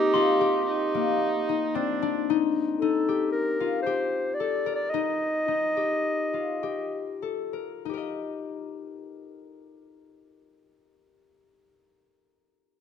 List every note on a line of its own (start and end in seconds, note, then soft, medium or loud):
0.00 0.94 A#3 medium
0.00 1.75 C4 medium
0.00 0.63 D#4 medium
0.00 1.49 D#4 medium
0.00 0.13 G4 medium
0.00 1.74 G4 medium
0.00 1.73 A#4 medium
0.14 2.67 F4 medium
0.14 1.44 C6 medium
0.41 2.76 G4 medium
0.66 1.76 D#4 medium
0.94 4.16 A#3 medium
1.49 2.08 D#4 medium
1.75 4.75 C4 medium
1.75 2.28 D4 medium
2.02 2.36 D4 medium
2.30 2.82 D#4 medium
2.80 4.93 D#4 medium
2.80 3.30 A4 medium
3.09 3.86 G4 medium
3.32 3.82 A#4 medium
3.60 6.13 F4 medium
3.82 4.36 C5 medium
3.86 5.76 G4 medium
4.34 4.75 D5 medium
4.40 4.72 A4 medium
4.66 6.78 A#4 medium
4.75 4.91 D5 medium
4.90 5.48 D#4 medium
4.90 7.21 D#5 medium
5.48 7.85 D#4 medium
5.77 6.63 G4 medium
6.34 8.86 F4 soft
6.63 7.89 G4 medium
7.22 7.59 A4 medium
7.53 7.93 A#4 soft
7.85 11.68 D#4 soft
7.89 11.72 G4 soft
7.94 11.76 A#4 soft
7.94 11.80 D#5 soft